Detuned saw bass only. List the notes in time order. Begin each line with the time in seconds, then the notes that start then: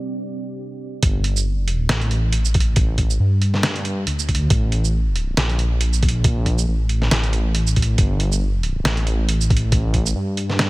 1.03 G1
1.89 A1
3.20 G2
4.07 D2
4.50 A1
5.37 A#1
6.68 A1
7.11 A1
7.77 A1
7.98 G1
8.85 A1
10.15 G2